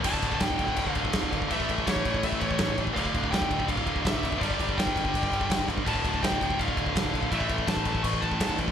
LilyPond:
<<
  \new Staff \with { instrumentName = "Lead electric guitar" } { \time 4/4 \key d \minor \tempo 4 = 165 a''4 g''4 f''2 | e''4 cis''4 e''8 cis''4 r8 | f''4 g''4 f''4 e''4 | d''4 g''2~ g''8 r8 |
a''4 g''4 f''2 | e''4 a''4 cis'''8 a''4 r8 | }
  \new Staff \with { instrumentName = "Distorted electric guitar" } { \clef bass \time 4/4 \key d \minor <d, a, d>1 | <a, e a>1 | <d, a, d>1 | <g, d g>1 |
<d, a, d>1 | <a, e a>1 | }
  \new Staff \with { instrumentName = "Picked electric bass" } { \clef bass \time 4/4 \key d \minor d,,8 d,,8 d,,8 d,,8 d,,8 d,,8 d,,8 gis,,8 | a,,8 a,,8 a,,8 a,,8 a,,8 a,,8 a,,8 a,,8 | d,,8 d,,8 d,,8 d,,8 d,,8 d,,8 d,,8 f,,8 | g,,8 g,,8 g,,8 g,,8 g,,8 g,,8 g,,8 g,,8 |
d,,8 d,,8 d,,8 d,,8 d,,8 d,,8 d,,8 bes,,8 | a,,8 a,,8 a,,8 a,,8 a,,8 a,,8 a,,8 a,,8 | }
  \new DrumStaff \with { instrumentName = "Drums" } \drummode { \time 4/4 <cymc bd>16 bd16 <cymc bd>16 bd16 <cymc bd sn>16 bd16 <cymc bd>16 bd16 <cymc bd>16 bd16 <cymc bd>16 bd16 <cymc bd sn>16 bd16 <cymc bd>16 bd16 | <cymc bd>16 bd16 <cymc bd>16 bd16 <cymc bd sn>16 bd16 <cymc bd>16 bd16 <cymc bd>16 bd16 <cymc bd>16 bd16 <cymc bd sn>16 bd16 <cymc bd>16 bd16 | <cymc bd>16 bd16 <cymc bd>16 bd16 <cymc bd sn>16 bd16 <cymc bd>16 bd16 <cymc bd>16 bd16 <cymc bd>16 bd16 <cymc bd sn>16 bd16 <cymc bd>16 bd16 | <cymc bd>16 bd16 <cymc bd>16 bd16 <cymc bd sn>16 bd16 <cymc bd>16 bd16 <cymc bd>16 bd16 <cymc bd>16 bd16 <cymc bd sn>16 bd16 <cymc bd>16 bd16 |
<cymc bd>16 bd16 <cymc bd>16 bd16 <cymc bd sn>16 bd16 <cymc bd>16 bd16 <cymc bd>16 bd16 <cymc bd>16 bd16 <cymc bd sn>16 bd16 <cymc bd>16 bd16 | <cymc bd>16 bd16 <cymc bd>16 bd16 <cymc bd sn>16 bd16 <cymc bd>16 bd16 <cymc bd>16 bd16 <cymc bd>16 bd16 <cymc bd sn>16 bd16 <cymc bd>16 bd16 | }
>>